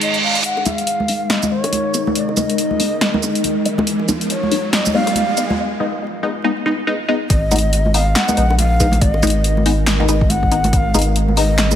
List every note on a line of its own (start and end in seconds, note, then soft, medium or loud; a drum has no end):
0.00 0.40 G#3 medium
0.00 0.40 D#4 medium
0.00 0.43 G#4 medium
0.00 0.21 D#5 medium
0.00 closed hi-hat medium
0.00 reverse cymbal medium
0.14 closed hi-hat soft
0.23 0.43 F5 medium
0.35 closed hi-hat medium
0.44 5.54 G#3 medium
0.44 3.84 D#4 medium
0.44 5.55 A#4 medium
0.44 0.67 F#5 loud
0.44 closed hi-hat medium
0.44 riser medium
0.57 high bongo soft
0.66 0.72 G#3 medium
0.66 0.72 B3 medium
0.66 0.72 D#4 loud
0.66 1.31 F5 loud
0.66 closed hi-hat medium
0.66 high conga medium
0.66 shaker medium
0.78 closed hi-hat soft
0.87 closed hi-hat medium
1.00 high conga medium
1.08 1.15 G#3 medium
1.08 1.15 B3 medium
1.08 1.15 D#4 medium
1.08 open hi-hat medium
1.30 1.53 D#5 medium
1.30 snare loud
1.30 closed hi-hat medium
1.42 1.50 G#3 medium
1.42 1.50 B3 medium
1.42 1.50 D#4 medium
1.42 high conga medium
1.42 shaker medium
1.51 1.58 G#3 medium
1.51 1.58 B3 medium
1.51 1.58 D#4 medium
1.51 2.15 C#5 medium
1.64 closed hi-hat medium
1.64 high bongo medium
1.72 closed hi-hat medium
1.72 high conga medium
1.94 2.01 G#3 medium
1.94 2.01 B3 medium
1.94 2.01 D#4 medium
1.94 closed hi-hat medium
1.94 shaker soft
2.07 high conga medium
2.15 3.62 D#5 medium
2.15 closed hi-hat medium
2.29 high bongo soft
2.37 2.44 G#3 medium
2.37 2.44 B3 medium
2.37 2.44 D#4 loud
2.37 closed hi-hat soft
2.37 high conga medium
2.37 shaker medium
2.50 closed hi-hat soft
2.58 closed hi-hat medium
2.71 high conga medium
2.80 2.86 G#3 medium
2.80 2.86 B3 medium
2.80 2.86 D#4 medium
2.80 open hi-hat medium
3.01 snare loud
3.01 closed hi-hat medium
3.14 3.21 G#3 medium
3.14 3.21 B3 medium
3.14 3.21 D#4 medium
3.14 high conga loud
3.23 3.29 G#3 medium
3.23 3.29 B3 medium
3.23 3.29 D#4 medium
3.23 high bongo soft
3.23 shaker soft
3.35 closed hi-hat medium
3.44 closed hi-hat medium
3.44 high conga medium
3.65 3.72 G#3 medium
3.65 3.72 B3 medium
3.65 3.72 D#4 medium
3.65 closed hi-hat medium
3.78 high bongo medium
3.78 high conga loud
3.87 5.57 F4 medium
3.87 closed hi-hat medium
3.99 high bongo soft
4.08 4.15 G#3 medium
4.08 4.15 B3 medium
4.08 4.15 D#4 loud
4.08 closed hi-hat soft
4.08 high conga medium
4.08 shaker medium
4.21 closed hi-hat soft
4.30 4.70 C#5 medium
4.30 closed hi-hat medium
4.43 high conga medium
4.51 4.58 G#3 medium
4.51 4.58 B3 medium
4.51 4.58 D#4 medium
4.51 open hi-hat medium
4.73 4.93 D#5 loud
4.73 snare loud
4.73 closed hi-hat medium
4.86 high conga medium
4.86 shaker medium
4.94 5.01 G#3 medium
4.94 5.01 B3 medium
4.94 5.01 D#4 loud
4.94 5.55 F5 loud
5.07 closed hi-hat medium
5.07 high bongo medium
5.15 closed hi-hat medium
5.15 high conga medium
5.37 5.44 G#3 medium
5.37 5.44 B3 medium
5.37 5.44 D#4 medium
5.37 closed hi-hat medium
5.37 shaker medium
5.50 high conga loud
5.80 5.87 G#3 medium
5.80 5.87 B3 medium
5.80 5.87 D#4 loud
6.23 6.29 G#3 loud
6.23 6.29 B3 medium
6.23 6.29 D#4 loud
6.44 6.51 G#3 loud
6.44 6.51 B3 medium
6.44 6.51 D#4 loud
6.66 6.72 G#3 loud
6.66 6.72 B3 medium
6.66 6.72 D#4 loud
6.87 6.94 G#3 loud
6.87 6.94 B3 medium
6.87 6.94 D#4 loud
7.08 7.15 G#3 loud
7.08 7.15 B3 medium
7.08 7.15 D#4 loud
7.30 8.15 G#1 loud
7.30 11.76 G#3 medium
7.30 11.76 D#4 medium
7.30 11.76 A#4 medium
7.30 7.96 D#5 loud
7.30 kick loud
7.30 closed hi-hat medium
7.51 7.58 G#3 loud
7.51 7.58 B3 medium
7.51 7.58 D#4 loud
7.51 closed hi-hat medium
7.51 high conga loud
7.51 shaker medium
7.56 closed hi-hat medium
7.59 closed hi-hat medium
7.73 closed hi-hat medium
7.86 high conga medium
7.94 8.01 G#3 medium
7.94 8.01 B3 medium
7.94 8.01 D#4 medium
7.94 8.17 F5 loud
7.94 open hi-hat medium
8.16 8.58 F#5 loud
8.16 snare loud
8.16 clap loud
8.16 closed hi-hat medium
8.28 8.36 G#3 medium
8.28 8.36 B3 medium
8.28 8.36 D#4 medium
8.28 high conga medium
8.28 shaker medium
8.37 9.00 A#1 medium
8.37 8.44 G#3 medium
8.37 8.44 B3 medium
8.37 8.44 D#4 medium
8.37 closed hi-hat medium
8.50 high bongo medium
8.58 9.03 F5 loud
8.58 closed hi-hat medium
8.58 high conga medium
8.80 8.87 G#3 medium
8.80 8.87 B3 medium
8.80 8.87 D#4 medium
8.80 kick medium
8.80 closed hi-hat medium
8.80 shaker soft
8.92 closed hi-hat soft
8.92 high conga medium
9.01 9.22 G#1 loud
9.01 9.13 D5 loud
9.01 kick loud
9.01 closed hi-hat medium
9.13 9.87 D#5 loud
9.13 high bongo soft
9.23 10.72 G#1 medium
9.23 9.29 G#3 loud
9.23 9.29 B3 medium
9.23 9.29 D#4 loud
9.23 closed hi-hat soft
9.23 high conga loud
9.23 shaker medium
9.27 closed hi-hat medium
9.30 closed hi-hat medium
9.44 closed hi-hat medium
9.57 high conga medium
9.66 9.72 G#3 medium
9.66 9.72 B3 medium
9.66 9.72 D#4 medium
9.66 open hi-hat medium
9.87 snare loud
9.87 clap medium
9.87 closed hi-hat medium
10.00 10.07 G#3 medium
10.00 10.07 B3 medium
10.00 10.07 D#4 medium
10.00 high conga loud
10.09 10.15 G#3 medium
10.09 10.15 B3 medium
10.09 10.15 D#4 medium
10.09 10.31 D#5 loud
10.09 closed hi-hat medium
10.09 high bongo soft
10.09 shaker medium
10.21 kick loud
10.30 10.73 F#5 loud
10.30 closed hi-hat medium
10.30 high conga medium
10.43 kick medium
10.51 10.58 G#3 medium
10.51 10.58 B3 medium
10.51 10.58 D#4 medium
10.51 closed hi-hat medium
10.64 closed hi-hat soft
10.64 high conga medium
10.73 10.93 G#1 loud
10.73 11.16 F5 loud
10.73 10.78 F#5 loud
10.73 kick loud
10.73 closed hi-hat medium
10.94 11.76 G#1 medium
10.94 11.01 G#3 loud
10.94 11.01 B3 medium
10.94 11.01 D#4 loud
10.94 closed hi-hat soft
10.94 high conga loud
10.94 shaker medium
10.99 closed hi-hat medium
11.02 closed hi-hat medium
11.16 closed hi-hat medium
11.28 high conga medium
11.37 11.44 G#3 medium
11.37 11.44 B3 medium
11.37 11.44 D#4 medium
11.37 11.76 D#5 loud
11.37 open hi-hat medium
11.58 snare loud
11.58 clap medium
11.58 closed hi-hat medium
11.71 11.76 G#3 medium
11.71 11.76 B3 medium
11.71 11.76 D#4 medium
11.71 high conga medium
11.71 shaker medium